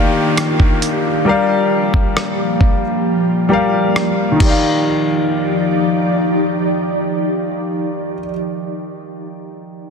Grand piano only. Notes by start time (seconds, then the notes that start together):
Already playing: D#3 A#3 G4 D5 F5
1.25 G3 G4 A#4 D5
1.29 F5
3.49 G3 G4 A#4 D5
3.53 F5
4.32 D#3
4.36 D#4
4.40 G4
4.45 D5
4.49 F5